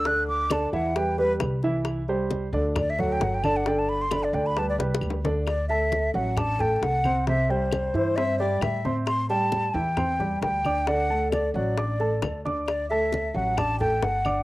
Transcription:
Already playing: D2
0.05 D3 D4 D5 F#6, high bongo, high conga
0.28 D6, high conga
0.50 D3 D4 D5 A5, high bongo, high conga, claves
0.73 E2 E3 E4 E5 F#5, high bongo, high conga
0.96 G3 G4 B4 G5, high bongo, high conga
1.18 G3 G4 B4, high bongo, high conga
1.40 C2, high bongo, low bongo, high conga, claves
1.63 E3 E4 E5, high bongo, high conga
1.85 high bongo, high conga, claves
2.08 G3 G4 C5, high conga
2.31 high bongo, high conga
2.53 D2 D3 D4 D5, high conga
2.76 D5, high bongo, high conga, low conga, claves
2.90 E5
2.99 F#3 F#4 A4 F#5, high conga, low conga
3.12 G5
3.20 G1 F#5, high bongo, low bongo, high conga
3.34 G5
3.44 D3 D4 D5 A5, high conga, claves
3.56 F#5
3.66 D3 D4 D5 G5, high bongo, high conga
3.79 A5
3.89 B5, high conga
4.02 C6
4.11 D3 D4 D5 B5, high bongo, high conga, claves
4.24 D5
4.33 D2 D3 D4 D5 G5, high bongo, high conga
4.46 B5
4.57 G3 G4 B4 A5, high bongo, high conga
4.70 D5
4.78 C2 G3 G4 B4, high bongo
4.95 high bongo
5.01 D2, high conga, claves
5.10 low bongo
5.25 D3 D4 D5, low bongo, high conga
5.47 D5, high bongo, high conga, claves
5.69 A3 A4 E5 A5, high bongo, high conga
5.92 high bongo, high conga
6.14 A1 F#3 F#4 F#5, high conga
6.37 D4 D5 A5 D6, high bongo, high conga, low conga, claves
6.59 A3 A4 G5 A5, high bongo, high conga, low conga
6.76 G5
6.81 C2 F#5, high bongo, low bongo, high conga
7.04 C4 C5 C6, high bongo, high conga, claves
7.27 C3 C4 C5 E5, high bongo
7.49 G3 G4 C5 G5, high conga
7.71 high bongo, high conga, claves
7.94 G2 E3 E4 C5 E5, high bongo
8.16 C4 C5 E5 C6, high bongo, high conga
8.39 G3 G4 D5 G5, high bongo, high conga
8.61 A2 E5, high bongo, low bongo, high conga, claves
8.85 C4 C5 C6, high bongo, high conga
9.07 C6, high bongo, high conga, claves
9.30 G3 G4 G5 A5, high bongo, high conga
9.52 high bongo, high conga
9.74 E2 E3 E4 E5 G5, high conga
9.97 C4 C5 C6, high bongo, high conga, low conga, claves
10.20 G3 G4 G5, high bongo, high conga, low conga
10.42 D2 G5, high bongo, low bongo, high conga
10.65 D4 D5 D6, high bongo, high conga, claves
10.87 D3 D4 D5 F#5, high bongo, high conga
11.10 A3 A4 A5, high conga
11.32 D5, high bongo, high conga, claves
11.54 A1 F#3 F#4 D5 F#5, high bongo
11.78 D4 D5 D6, high bongo, high conga
12.00 A3 A4 A5, high bongo, high conga
12.22 D2, high bongo, low bongo, high conga, claves
12.45 D4 D5 D6, high bongo, high conga
12.67 D5, high bongo, high conga, claves
12.90 A3 A4 E5 A5, high bongo, high conga
13.12 high bongo, high conga
13.34 A1 F#3 F#4 F#5, high conga
13.57 D4 D5 A5 D6, high bongo, high conga, low conga, claves
13.80 A3 A4 G5 A5, high bongo, high conga, low conga
14.02 G1 F#5, high bongo, low bongo, high conga
14.25 D4 D5 D6, high bongo, high conga, claves

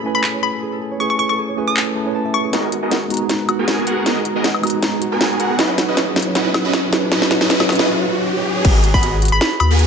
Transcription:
Already playing: A3 C#4 E4 F#4 A4 B4 C#5 G#5
0.03 A3 C#4 E4 G#4 B4 G#5
0.15 A4 B5
0.24 G#4 B5, clap
0.34 C#5
0.43 G#4 B5
0.53 A4
0.62 G#4
0.72 A4
0.81 G#4
0.91 C#5
0.98 A3 C#4 E4 G#4 G#5 C#6
1.02 B4
1.10 A4 C#6
1.19 G#4 C#6
1.29 A4 C#6
1.38 G#4
1.49 C#5
1.56 A3 C#4 E4 G#4 B4 G#5
1.68 A4 D#6
1.77 G#4, clap
1.87 A4
1.95 A3 C#4 E4 G#4 B4 A5
2.04 A3 C#4 E4 C#5
2.08 B4
2.15 A5
2.25 E5
2.34 G#4 C#6
2.44 G#4
2.51 G#1 G#3 B3 D#4 F#4 G#4 A#4 D#5, snare, closed hi-hat, riser
2.63 G#4
2.72 F#4, closed hi-hat
2.82 B3 F#4 G#4 A#4 B4 D#5
2.91 F#4, snare, closed hi-hat
3.02 G#4
3.08 G#3 B3 D#4 F#4 A#5, closed hi-hat
3.14 closed hi-hat
3.17 G#4, closed hi-hat
3.29 F#4, snare, closed hi-hat
3.40 B4
3.49 D#2 F#4, closed hi-hat, high woodblock
3.59 B3 F#4 G#4 A#4 G#5
3.68 F#4, snare, closed hi-hat
3.78 G#4
3.87 B3 F#4 G#4 A#4 F#5, closed hi-hat
3.97 B4
4.04 G#1 G#3 B3 D#4 F#4 G#4 A#4 D#5 A#5, snare, closed hi-hat
4.16 G#4
4.25 F#4, closed hi-hat
4.35 B3 F#4 G#4 A#4 D#5
4.44 F#4, snare, closed hi-hat
4.54 B4, high woodblock
4.61 G#3 B3 D#4 F#4 A#5, closed hi-hat, high woodblock
4.67 closed hi-hat
4.70 G#4, closed hi-hat
4.82 F#4, snare, closed hi-hat
4.93 G#4
5.01 D#2 F#4, closed hi-hat
5.12 B3 F#4 G#4 A#4 B4 G#5
5.21 F#4, snare, closed hi-hat
5.31 G#4
5.40 A#1 B3 F#4 G#4 A#4 F#5, closed hi-hat
5.50 G#4
5.57 G#1 F#3 C#4 D#4 E4 F#4 B4 D#5, snare, closed hi-hat
5.69 C#5
5.78 F#4, snare, closed hi-hat
5.88 C#4 E4 F#4 G#4 B4 D#5
5.97 F#4, snare, closed hi-hat
6.07 G#4
6.14 F#3 C#4 D#4 E4 F#4, snare, closed hi-hat
6.18 B4, closed hi-hat
6.22 C#5, closed hi-hat
6.33 F#3 C#4 D#4 E4 F#4 B4 D#5, snare, closed hi-hat
6.37 B4
6.45 C#5
6.54 D#2 F#4, snare, closed hi-hat, high woodblock
6.65 C#4 E4 F#4 G#4 B4 D#5
6.73 F#4, snare, closed hi-hat
6.84 G#4
6.90 F#3 C#4 D#4 E4 F#4, snare, closed hi-hat
6.95 B4
7.03 C#5
7.10 F#3 C#4 D#4 E4 F#4 B4 D#5, snare, closed hi-hat
7.22 C#5, snare
7.31 F#4, snare, closed hi-hat
7.41 C#4 E4 F#4 G#4 B4 D#5, snare
7.48 F#3 C#4 D#4 E4 F#4 B4 D#5, snare, closed hi-hat
7.60 C#5, snare, high woodblock
7.69 F#4, snare, closed hi-hat, high woodblock
7.73 closed hi-hat
7.75 C#4 E4 F#4 G#4 B4 D#5, snare, closed hi-hat
7.88 F#4
7.98 C#5
8.07 F#4
8.18 C#5
8.26 F#4
8.37 C#5
8.46 F#4
8.56 C#5
8.65 G#1 B3 F#4 G#4 A#4 D#5, kick, closed hi-hat, crash
8.75 G#4
8.84 F#4, closed hi-hat
8.94 B3 F#4 G#4 A#4 B4 D#5 B5, kick
9.03 F#4, closed hi-hat
9.13 G#4
9.22 F#4, closed hi-hat
9.25 closed hi-hat
9.28 G#4 B5, closed hi-hat
9.41 F#4 B5, snare, closed hi-hat
9.51 B4
9.60 D#2 F#4 B5, closed hi-hat, high woodblock
9.71 B3 F#4 G#4 A#4 G#5
9.79 F#4, closed hi-hat

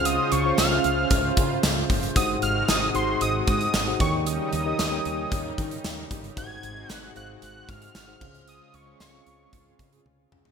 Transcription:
Already playing: C#2 C#3 C#4 F4 G#4 C5 F5
0.05 D#6, closed hi-hat
0.32 C#2 C#6, closed hi-hat
0.44 C#4 F4 G#4 C5 F5
0.58 C#2 F6, snare, closed hi-hat, tambourine
0.71 C#4 F4 G#4 C5 E5
0.78 F5
0.84 C#2, closed hi-hat
1.11 C#2, kick, closed hi-hat
1.37 C#3, kick, closed hi-hat
1.63 C#2, snare, closed hi-hat, tambourine
1.90 F#1, kick, open hi-hat
2.03 closed hi-hat
2.15 G#1 G#2 C3 G#3 D#4 F#4 G#4 C5 F#5 D#6, kick, closed hi-hat
2.42 G#1 F6, closed hi-hat
2.68 G#1 D#6, snare, closed hi-hat, tambourine
2.94 G#1 D#4 F#4 G#4 C5 F#5 C6, closed hi-hat
3.21 G#1 D#6, closed hi-hat
3.47 G#2 D#6, kick, closed hi-hat
3.61 closed hi-hat
3.74 G#1, snare, closed hi-hat, tambourine
3.86 D#4 F#4 G#4 C5 F#5
3.99 D#2 C#3 D#3 G3 D#4 G4 A#4 C#5 G5 C#6, kick, closed hi-hat
4.26 D#6, closed hi-hat
4.53 D#2, closed hi-hat
4.65 D#4 G4 A#4 C#5 D#5
4.79 D#2, snare, closed hi-hat, tambourine
4.91 D#4 G4 A#4 C#5 G5
5.05 D#2, closed hi-hat
5.32 D#2, kick, closed hi-hat
5.58 D#3, kick, closed hi-hat
5.71 closed hi-hat
5.84 D#2, snare, closed hi-hat, tambourine
6.11 G1, kick, closed hi-hat
6.24 closed hi-hat
6.36 G#1 G#2 C3 G#3 D#4 F#4 G#4 C5 F5 G#6, kick, closed hi-hat
6.44 F#5
6.63 G#1, closed hi-hat
6.89 G#1 F#6, snare, closed hi-hat, tambourine
7.15 G#1 D#4 F#4 G#4 C5 F5 F#6, closed hi-hat
7.42 G#1 F#6, closed hi-hat
7.69 G#2 F6, kick, closed hi-hat
7.82 closed hi-hat
7.95 G#1, snare, closed hi-hat, tambourine
8.07 D#4 F#4 G#4 C5 F#5
8.20 C#2 C#3 G#3 C#4 F4 G#4 C5 F5, kick, crash
8.35 closed hi-hat
8.48 D#6, closed hi-hat
8.74 C#2 C#6, closed hi-hat
8.86 C#4 F4 G#4 C5 F5
9.00 C#2 C#6, snare, closed hi-hat, tambourine
9.13 C4 C#4 F4 G#4 F5
9.26 C#2, closed hi-hat
9.53 C#2, kick, closed hi-hat
9.66 C#4 F4 G#4
9.79 C#3, kick, closed hi-hat
9.92 C#4 F4 G#4, closed hi-hat
10.05 C#2, high tom
10.32 C2 C#4 F4 G#4, mid tom
10.45 floor tom

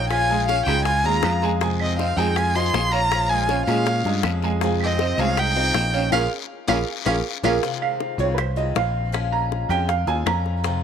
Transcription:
Already playing: A#1 F4 C#5 F5
0.10 F3 G#3 C#4 F4 G#5, high bongo, long guiro, claves
0.30 G#3 G#4 G#5
0.47 C#4 C#5 F5, high bongo, short guiro
0.66 C#2 G#3 C#4 D#4 F4 G#4 G5 G#5, high bongo, short guiro, claves
0.85 F4 G#5, muted steel-string acoustic guitar stroke, high bongo, long guiro
1.04 D#2 G#3 C#4 F4 G#4 G#5 A#5, high bongo
1.23 F2 F3 G#3 C#4 F4, high bongo, low bongo, short guiro, claves
1.42 G#3 G#4 G#5, high bongo, short guiro
1.61 C3 D#3 G#3 C4 F4 G#4 G#5, high bongo, long guiro
1.80 C4 D#5, claves
1.99 C4 C5 D#5 F5, high bongo, short guiro
2.17 F2 D#3 G#3 C4 D#4 F4 G#4 G5 G#5, short guiro
2.36 F4 G#5, muted steel-string acoustic guitar stroke, high bongo, long guiro, claves
2.55 D#3 G#3 C4 F4 G#4 C5 D#5 C6
2.74 A#1 D#3 G#3 C4 F4, high bongo, low bongo, short guiro
2.91 F4 C#5 F5 A#5, short guiro
3.12 F3 G#3 C#4 F4, high bongo, long guiro, claves
3.29 G#3 F4 G#4 G#5
3.49 C#4 C#5 F5, high bongo, short guiro
3.66 A#2 G#3 C#4 F4 G#4 F5 G#5, high bongo, short guiro, claves
3.86 muted steel-string acoustic guitar stroke, high bongo, long guiro
4.05 G2 G#3 C#4 F4 G#4 G#5, high bongo
4.23 F2 F3 G#3 C#4 F4, high bongo, low bongo, short guiro, claves
4.42 G#3 G#4 G#5, high bongo, short guiro
4.61 C3 D#3 G#3 C4 F4 G#4 G#5, high bongo, long guiro
4.81 C4 D#5, claves
4.99 C4 C5 D#5, high bongo, short guiro
5.18 C2 D#3 G#3 C4 C#4 F4 G#4 F5 G#5, short guiro
5.37 D#4 G5, muted steel-string acoustic guitar stroke, high bongo, long guiro, claves
5.56 D#3 G#3 C4 F4 C5 D#5
5.74 A#1 D#3 G#3 C4 F4, high bongo, low bongo, short guiro
5.93 C#4 C#5 F5, short guiro
6.12 A#1 G#3 A#3 C#4 F4 G#4 A#4 F5, low bongo, long guiro, claves
6.68 A#1 G#3 A#3 C#4 F4 G#4 A#4 F5, low bongo, long guiro, claves
7.05 A#1 G#3 A#3 C#4 F4 G#4 A#4 F5, low bongo, claves
7.43 A#1 G#3 A#3 C#4 F4 G#4 A#4 F5, low bongo, long guiro, claves
7.63 C3 D#3 G#3 C4 F4, high bongo
7.82 F5, claves
8.00 high bongo
8.18 C2 D#3 G#3 C4 F4 C#5
8.34 B4, muted steel-string acoustic guitar stroke, high bongo
8.39 C5, claves
8.56 D#3 G#3 C4 F4 D#5
8.75 A#1 D#3 G#3 C4 F4 F5, high bongo, low bongo
9.12 F3 G#3 C#4 F4, high bongo, claves
9.32 A#5
9.52 high bongo
9.69 F2 G#3 C#4 F4 G5, high bongo, claves
9.89 F5, muted steel-string acoustic guitar stroke, high bongo
10.07 D#2 G#3 C#4 F4 G#5, high bongo
10.26 F2 F3 G#3 C#4 F4 A#5, high bongo, low bongo, claves
10.46 high bongo
10.64 C3 D#3 G#3 C4 F4, high bongo

